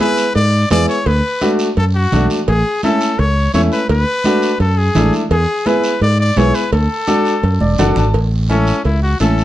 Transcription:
0.00 upright piano B3 E4 G#4, trumpet B4, cowbell, high conga, short guiro
0.17 short guiro
0.35 fingered electric bass G#2, trumpet D5, cowbell, long guiro
0.70 fingered electric bass E2, upright piano B3 E4 G#4, trumpet D5, cowbell, high conga, low timbale, short guiro
0.88 trumpet C#5, short guiro
1.06 fingered electric bass D2, trumpet B4, cowbell, long guiro
1.41 upright piano A3 D4 F#4, cowbell, high conga, short guiro
1.59 short guiro
1.77 fingered electric bass F#2, trumpet A4, cowbell, high conga, long guiro
1.95 trumpet F#4
2.12 fingered electric bass B1, upright piano A3 D4 F#4, cowbell, high conga, low conga, short guiro
2.30 short guiro
2.48 fingered electric bass A1, trumpet G#4, cowbell, high conga, long guiro
2.83 upright piano A3 C#4 E4, trumpet A4, cowbell, high conga, short guiro
3.01 short guiro
3.18 fingered electric bass C#2, trumpet C#5, cowbell, high conga, long guiro
3.54 fingered electric bass E2, upright piano A3 C#4 E4, trumpet C#5, cowbell, high conga, short guiro
3.72 trumpet B4, short guiro
3.89 fingered electric bass D2, trumpet B4, cowbell, high conga, long guiro
4.24 upright piano A3 D4 F#4, cowbell, high conga, short guiro
4.42 short guiro
4.60 fingered electric bass F#2, trumpet A4, cowbell, high conga, long guiro
4.78 trumpet G#4
4.95 fingered electric bass A1, upright piano A3 D4 E4, cowbell, high conga, low conga, low timbale, short guiro
5.13 short guiro
5.31 fingered electric bass E2, trumpet G#4, cowbell, long guiro
5.66 upright piano B3 E4 G#4, trumpet B4, cowbell, high conga, short guiro
5.84 short guiro
6.01 fingered electric bass G#2, trumpet D5, cowbell, high conga, long guiro
6.20 trumpet D5
6.36 fingered electric bass B1, upright piano B3 E4 G#4, trumpet C#5, cowbell, high conga, low timbale, short guiro
6.54 trumpet B4, short guiro
6.72 fingered electric bass D2, trumpet A4, cowbell, high conga, long guiro
7.07 upright piano D4 F#4 A4, cowbell, high conga, short guiro
7.25 short guiro
7.43 fingered electric bass F#2, cowbell, high conga, long guiro
7.60 fingered electric bass E1, upright piano D5, high conga
7.78 fingered electric bass F#1, upright piano D4 F#4 A4 F#5, cowbell, low conga, low timbale, short guiro
7.96 fingered electric bass G#1, upright piano A5, low conga, short guiro
8.14 fingered electric bass A1, cowbell, long guiro
8.49 trumpet C#4, upright piano C#4 E4 A4, cowbell, high conga, short guiro
8.67 short guiro
8.85 fingered electric bass C#2, trumpet E4, cowbell, high conga, long guiro
9.03 trumpet F#4
9.20 fingered electric bass A1, upright piano C#4 E4 A4, trumpet A4, cowbell, high conga, short guiro
9.38 short guiro

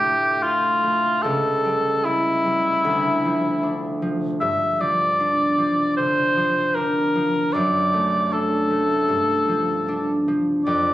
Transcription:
Already playing: harp D2 A2 F4, cor anglais G4
0.03 harp A3
0.43 harp F4, cor anglais F4
0.83 harp A3
1.23 harp C#2, cor anglais A4
1.65 harp G3
2.05 harp E4, cor anglais E4
2.45 harp G3
2.85 harp D2
3.25 harp F3
3.63 harp D4
4.02 harp F3
4.41 harp G2, cor anglais E5
4.80 harp F3, cor anglais D5
5.20 harp D4
5.58 harp F3
5.97 harp D3, cor anglais C5
6.37 harp F3
6.75 harp D4, cor anglais A#4
7.15 harp F3
7.53 harp F#2, cor anglais D5
7.94 harp A3
8.32 harp D4, cor anglais A4
8.70 harp A3
9.08 harp G2
9.48 harp F3
9.88 harp D4
10.28 harp F3
10.65 harp F2, cor anglais D5

